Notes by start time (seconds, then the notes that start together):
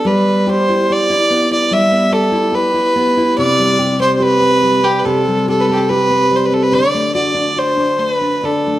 Already playing: B3 D4 A4
0.05 G3 B4
0.47 G4 C5
0.69 E4
0.90 G4 D5
1.10 E4
1.30 B3
1.51 E4 D5
1.71 G3 E5
1.92 B3
2.11 G4 A4
2.32 E4
2.52 G4 B4
2.74 E4
2.96 B3
3.17 E4
3.38 C3 D5
3.59 G3
3.79 G4
4.00 C4 C5
4.16 C5
4.20 G4 B4
4.41 C4
4.62 G3
4.83 C4 G4
4.99 B4
5.06 C3 A4
5.28 G3
5.48 G4 A4
5.60 A4 B4
5.69 C4 G4
5.76 A4
5.89 G4 B4
6.10 C4
6.31 G3
6.36 C5
6.46 B4
6.51 C4 A4
6.63 B4
6.72 D3 D5
6.94 A3
7.15 F#4 D5
7.34 D4
7.56 F#4 C5
7.77 D4
7.99 A3 C5
8.11 B4
8.21 D4
8.43 D3 A4
8.67 A3